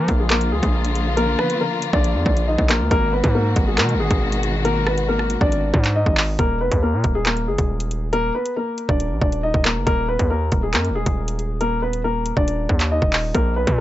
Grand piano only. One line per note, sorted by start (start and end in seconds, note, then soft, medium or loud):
0.00 0.18 A#3 medium
0.00 0.17 A#4 medium
0.20 0.29 G#3 medium
0.20 0.29 G#4 medium
0.30 0.50 A#3 medium
0.30 0.49 A#4 medium
0.52 1.14 G#3 medium
0.52 1.13 G#4 medium
1.17 1.36 A#3 medium
1.17 1.36 A#4 loud
1.39 1.58 B3 medium
1.39 1.58 B4 medium
1.61 1.92 A#3 medium
1.61 1.91 A#4 medium
1.93 2.24 D4 medium
1.93 2.24 D5 medium
2.26 2.45 D4 medium
2.26 2.45 D5 medium
2.48 2.67 D#4 medium
2.48 2.66 D#5 medium
2.69 2.89 A#3 medium
2.69 2.88 A#4 medium
2.91 3.10 A#3 medium
2.91 3.10 A#4 loud
3.13 3.32 B3 medium
3.13 3.32 B4 medium
3.35 3.66 A#3 medium
3.35 3.65 A#4 medium
3.67 3.77 G#3 medium
3.67 3.77 G#4 medium
3.78 3.97 A#3 medium
3.78 3.97 A#4 medium
4.00 4.61 G#3 medium
4.00 4.61 G#4 medium
4.65 4.84 A#3 medium
4.65 4.84 A#4 loud
4.87 5.06 B3 medium
4.87 5.06 B4 medium
5.09 5.40 A#3 medium
5.09 5.39 A#4 medium
5.41 5.93 D4 medium
5.41 5.92 D5 medium
5.96 6.37 D#4 medium
5.96 6.36 D#5 medium
6.39 6.58 A#3 medium
6.39 6.58 A#4 loud
6.61 6.80 B3 medium
6.61 6.80 B4 medium
6.83 7.14 A#3 medium
6.83 7.13 A#4 medium
7.15 7.25 G#3 medium
7.15 7.24 G#4 medium
7.26 7.45 A#3 medium
7.26 7.45 A#4 medium
7.48 8.09 G#3 medium
7.48 8.09 G#4 medium
8.13 8.32 A#3 medium
8.13 8.32 A#4 loud
8.35 8.54 B3 medium
8.35 8.53 B4 medium
8.57 8.88 A#3 medium
8.57 8.87 A#4 medium
8.89 9.20 D4 medium
8.89 9.20 D5 medium
9.22 9.41 D4 medium
9.22 9.40 D5 medium
9.43 9.63 D#4 medium
9.43 9.62 D#5 medium
9.65 9.84 A#3 medium
9.65 9.84 A#4 medium
9.87 10.06 A#3 medium
9.87 10.05 A#4 loud
10.08 10.28 B3 medium
10.08 10.27 B4 medium
10.30 10.61 A#3 medium
10.30 10.61 A#4 medium
10.63 10.73 G#3 medium
10.63 10.72 G#4 medium
10.74 10.93 A#3 medium
10.74 10.92 A#4 medium
10.95 11.57 G#3 medium
10.95 11.57 G#4 medium
11.61 11.80 A#3 medium
11.61 11.80 A#4 loud
11.82 12.02 B3 medium
11.82 12.01 B4 medium
12.04 12.35 A#3 medium
12.04 12.35 A#4 medium
12.37 12.88 D4 medium
12.37 12.88 D5 medium
12.91 13.33 D#4 medium
12.91 13.32 D#5 medium
13.35 13.54 A#3 medium
13.35 13.53 A#4 loud
13.56 13.76 B3 medium
13.56 13.75 B4 medium